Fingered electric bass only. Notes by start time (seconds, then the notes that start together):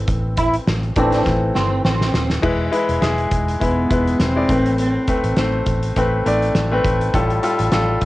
0.08 A1
0.67 A1
0.97 A1
1.26 A1
1.55 G1
1.85 A1
2.15 D#1
2.43 E1
2.89 E1
3.02 E1
3.31 E1
3.61 E1
3.91 E1
4.19 E1
4.49 A1
5.24 A1
5.37 A1
5.67 A1
5.96 A1
6.26 A1
6.55 A1
6.85 A1
7.14 A1
7.60 A1
7.72 A1
8.02 A1